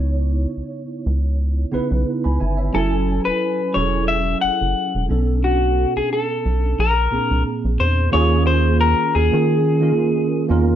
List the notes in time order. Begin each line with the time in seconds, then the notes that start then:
Already playing: C#2 C#3 B3 D#4 E4 C#5
0.57 C#2
1.06 C#2
1.71 B1 C#3 B3 D#4 E4 B4
1.91 B1
2.24 C#2 G#5 B5
2.40 G1 E5 G#5
2.57 C#5 E5
2.73 F#1 F#3 C#4 E4 A4 G#5
3.25 E1 B4
3.73 E1 F#3 C#4 E4 G#4 A4 C#5
4.08 E5
4.41 F#1 F#5
4.61 F#1
4.95 E1
5.08 B1 B2 B3 C#4 D4 A4
5.44 F#4
5.96 B1 G#4
6.13 A4
6.46 B1
6.79 A#1 A#4
7.10 C2 A#2 A#3 C4 D4 G#4
7.31 C2
7.65 A#1
7.80 E2 C5
8.11 D#2 D#3 A#3 C#4 F4 G#4 C#5
8.47 C5
8.81 A#4
9.15 D#2 G#4
9.31 D#3 A#3 C#4 F4 G#4
9.80 D#3 A#3 C#4 F4 A#4
10.49 E2 D#3 A#3 C#4 F4 A#4